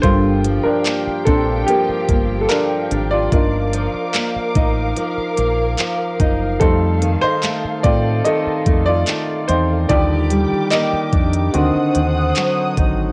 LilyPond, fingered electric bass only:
\new Staff \with { instrumentName = "Fingered electric bass" } { \clef bass \time 4/4 \key g \minor \tempo 4 = 73 g,,8. r8. bes,,8 r8 g,,8 r8 aes,,8 | g,,8. r8. a,,8 r8 bes,,8 r8 fis,,8 | f,8. r8. a,8 r8 f,8 r8 e,8 | ees,8. r8. f,8 d,16 r16 ees,8 r8 aes,,8 | }